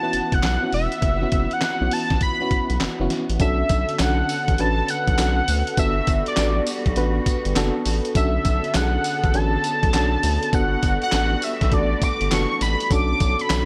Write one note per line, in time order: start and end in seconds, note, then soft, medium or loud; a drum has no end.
0.00 3.36 E3 medium
0.00 0.03 B3 medium
0.00 3.36 B3 medium
0.00 0.50 B3 medium
0.00 0.03 C#4 medium
0.00 0.50 C#4 medium
0.00 0.04 E4 medium
0.00 0.50 E4 medium
0.00 3.42 F4 medium
0.00 0.04 F#4 medium
0.00 0.51 F#4 medium
0.00 3.36 F#5 medium
0.00 0.35 A5 loud
0.13 0.21 F#1 soft
0.13 closed hi-hat medium
0.32 0.41 F#1 medium
0.32 0.73 F#5 medium
0.32 kick loud
0.32 closed hi-hat medium
0.43 0.58 B1 medium
0.43 snare loud
0.43 clap medium
0.43 closed hi-hat medium
0.62 1.09 B3 medium
0.62 1.10 C#4 medium
0.62 1.10 E4 medium
0.62 1.10 F#4 medium
0.73 0.88 E1 medium
0.73 1.54 E5 loud
0.73 open hi-hat medium
0.92 closed hi-hat soft
1.02 1.26 F#1 loud
1.02 kick loud
1.02 closed hi-hat medium
1.22 1.69 B3 medium
1.22 1.69 C#4 medium
1.22 1.69 E4 medium
1.22 1.69 F#4 medium
1.32 1.47 F#1 loud
1.32 kick medium
1.32 closed hi-hat medium
1.51 1.94 F#5 loud
1.51 closed hi-hat soft
1.61 snare loud
1.61 clap medium
1.61 closed hi-hat medium
1.81 1.89 B1 medium
1.81 2.28 B3 medium
1.81 2.28 C#4 medium
1.81 2.29 E4 medium
1.81 2.29 F#4 medium
1.91 2.22 A5 loud
1.91 open hi-hat medium
2.10 2.19 A1 loud
2.10 kick medium
2.10 snare medium
2.10 closed hi-hat soft
2.21 2.77 B5 loud
2.21 kick medium
2.21 closed hi-hat medium
2.41 2.88 B3 medium
2.41 2.88 C#4 medium
2.41 2.88 E4 medium
2.41 2.88 F#4 loud
2.51 2.59 B1 medium
2.51 kick medium
2.51 closed hi-hat medium
2.70 2.78 B1 medium
2.70 closed hi-hat medium
2.80 2.88 F#1 soft
2.80 snare loud
2.80 clap medium
2.80 closed hi-hat medium
3.00 3.08 F#1 medium
3.00 3.40 B3 medium
3.00 3.39 C#4 medium
3.00 3.41 E4 medium
3.00 3.40 F#4 loud
3.10 snare medium
3.10 closed hi-hat medium
3.29 3.38 A1 medium
3.29 closed hi-hat medium
3.40 3.63 B1 loud
3.40 5.75 D3 medium
3.40 13.65 B3 medium
3.40 3.93 C#4 medium
3.40 3.93 D4 medium
3.40 3.93 F#4 medium
3.40 5.75 A4 medium
3.40 3.93 A4 loud
3.40 4.02 E5 loud
3.40 kick loud
3.40 closed hi-hat medium
3.40 tambourine medium
3.69 3.85 B1 loud
3.69 kick loud
3.69 closed hi-hat medium
3.69 tambourine medium
3.89 closed hi-hat soft
3.99 4.23 B1 loud
3.99 4.52 C#4 medium
3.99 4.52 D4 medium
3.99 4.53 F#4 medium
3.99 4.53 A4 medium
3.99 4.62 F#5 loud
3.99 snare loud
3.99 clap medium
3.99 closed hi-hat medium
3.99 tambourine medium
4.29 open hi-hat medium
4.29 tambourine medium
4.48 4.57 A1 loud
4.48 kick medium
4.48 closed hi-hat medium
4.58 4.82 A1 loud
4.58 5.11 C#4 medium
4.58 5.12 D4 medium
4.58 5.12 F#4 medium
4.58 5.12 B4 loud
4.58 4.92 A5 loud
4.58 closed hi-hat medium
4.88 5.78 F#5 loud
4.88 closed hi-hat medium
4.88 tambourine medium
5.07 5.16 B1 loud
5.07 kick medium
5.07 closed hi-hat medium
5.18 5.41 B1 medium
5.18 5.71 C#4 medium
5.18 5.71 D4 medium
5.18 5.71 F#4 medium
5.18 5.72 A4 medium
5.18 snare loud
5.18 clap medium
5.18 closed hi-hat medium
5.18 tambourine medium
5.48 5.63 D2 medium
5.48 open hi-hat medium
5.48 tambourine medium
5.67 closed hi-hat medium
5.77 6.01 G1 loud
5.77 8.13 G3 medium
5.77 6.30 B3 medium
5.77 6.31 D4 medium
5.77 8.13 F#4 medium
5.77 6.31 F#4 medium
5.77 6.31 A4 medium
5.77 6.24 E5 loud
5.77 kick loud
5.77 closed hi-hat medium
5.77 tambourine medium
6.07 6.22 G1 loud
6.07 kick loud
6.07 closed hi-hat medium
6.07 tambourine medium
6.26 6.83 D5 medium
6.26 closed hi-hat soft
6.37 6.60 A1 medium
6.37 6.90 B3 medium
6.37 6.90 D4 medium
6.37 6.90 F#4 medium
6.37 6.90 A4 medium
6.37 snare loud
6.37 clap medium
6.37 closed hi-hat medium
6.37 tambourine medium
6.67 open hi-hat medium
6.67 tambourine medium
6.86 6.94 B1 loud
6.86 kick medium
6.86 closed hi-hat medium
6.96 7.20 A1 loud
6.96 7.49 B3 loud
6.96 7.49 D4 medium
6.96 7.49 F#4 medium
6.96 7.50 B4 loud
6.96 closed hi-hat medium
7.26 kick medium
7.26 closed hi-hat medium
7.26 tambourine medium
7.45 7.54 G1 loud
7.45 closed hi-hat medium
7.56 7.71 F#1 medium
7.56 8.08 B3 loud
7.56 8.09 D4 loud
7.56 8.09 F#4 medium
7.56 8.09 A4 loud
7.56 snare loud
7.56 clap medium
7.56 closed hi-hat medium
7.56 tambourine loud
7.85 8.01 A1 medium
7.85 open hi-hat medium
7.85 tambourine medium
8.05 closed hi-hat medium
8.15 8.38 B1 loud
8.15 10.50 D3 medium
8.15 8.68 C#4 medium
8.15 8.68 D4 medium
8.15 8.68 F#4 medium
8.15 10.50 A4 medium
8.15 8.68 A4 loud
8.15 8.78 E5 loud
8.15 kick loud
8.15 closed hi-hat medium
8.15 tambourine medium
8.45 8.60 B1 loud
8.45 kick loud
8.45 closed hi-hat medium
8.45 tambourine medium
8.64 closed hi-hat soft
8.74 8.98 B1 loud
8.74 9.27 C#4 medium
8.74 9.28 D4 medium
8.74 9.28 F#4 medium
8.74 8.84 G#4 medium
8.74 9.37 F#5 loud
8.74 snare loud
8.74 clap medium
8.74 closed hi-hat medium
8.74 tambourine medium
8.82 9.31 A4 medium
9.04 open hi-hat medium
9.04 tambourine medium
9.24 9.32 A1 loud
9.24 kick medium
9.24 closed hi-hat soft
9.34 9.57 A1 loud
9.34 9.87 C#4 medium
9.34 9.87 D4 medium
9.34 9.87 F#4 medium
9.34 9.87 A4 loud
9.34 10.56 A5 loud
9.34 closed hi-hat medium
9.64 closed hi-hat medium
9.64 tambourine medium
9.83 9.91 B1 loud
9.83 kick medium
9.83 closed hi-hat medium
9.93 10.17 B1 medium
9.93 10.46 C#4 medium
9.93 10.46 D4 medium
9.93 10.47 F#4 medium
9.93 10.47 A4 loud
9.93 snare loud
9.93 clap medium
9.93 closed hi-hat medium
9.93 tambourine medium
10.23 10.38 D2 medium
10.23 open hi-hat medium
10.23 tambourine medium
10.43 closed hi-hat medium
10.53 10.76 G1 loud
10.53 12.88 G3 medium
10.53 11.06 B3 medium
10.53 11.06 D4 medium
10.53 12.88 F#4 medium
10.53 11.06 F#4 medium
10.53 11.06 A4 loud
10.53 11.02 F#5 loud
10.53 kick loud
10.53 closed hi-hat medium
10.53 tambourine medium
10.83 10.98 G1 loud
10.83 kick loud
10.83 closed hi-hat medium
10.83 tambourine medium
11.02 11.45 F#5 loud
11.02 closed hi-hat soft
11.12 11.36 A1 loud
11.12 11.65 B3 medium
11.12 11.65 D4 medium
11.12 11.65 F#4 medium
11.12 11.66 A4 medium
11.12 snare loud
11.12 clap medium
11.12 closed hi-hat medium
11.12 tambourine medium
11.42 11.75 E5 medium
11.42 open hi-hat medium
11.42 tambourine medium
11.61 11.70 B1 loud
11.61 kick medium
11.61 snare medium
11.61 closed hi-hat medium
11.72 11.95 A1 loud
11.72 11.80 A3 medium
11.72 12.25 D4 medium
11.72 12.25 F#4 medium
11.72 12.25 A4 loud
11.72 12.05 D5 loud
11.72 kick loud
11.72 closed hi-hat medium
11.78 12.28 B3 medium
12.02 12.34 D6 loud
12.02 kick medium
12.02 closed hi-hat medium
12.02 tambourine medium
12.21 12.29 G1 loud
12.21 closed hi-hat medium
12.31 12.46 F#1 medium
12.31 12.84 B3 medium
12.31 12.84 D4 medium
12.31 12.84 F#4 medium
12.31 12.84 A4 loud
12.31 12.62 C#6 loud
12.31 snare loud
12.31 clap medium
12.31 closed hi-hat medium
12.31 tambourine medium
12.61 12.76 A1 medium
12.61 12.94 B5 loud
12.61 snare medium
12.61 closed hi-hat medium
12.61 tambourine medium
12.80 closed hi-hat medium
12.91 13.14 B1 loud
12.91 13.65 D3 medium
12.91 13.43 C#4 medium
12.91 13.43 D4 medium
12.91 13.44 F#4 medium
12.91 13.65 A4 medium
12.91 13.44 A4 medium
12.91 13.43 D6 loud
12.91 kick loud
12.91 closed hi-hat medium
12.91 tambourine medium
13.20 13.35 B1 loud
13.20 kick loud
13.20 closed hi-hat medium
13.20 tambourine medium
13.39 13.65 B5 loud
13.39 closed hi-hat soft
13.50 13.65 B1 medium
13.50 13.65 C#4 medium
13.50 13.65 D4 medium
13.50 13.65 F#4 medium
13.50 13.65 A4 medium
13.50 snare loud
13.50 clap medium
13.50 closed hi-hat medium
13.50 tambourine medium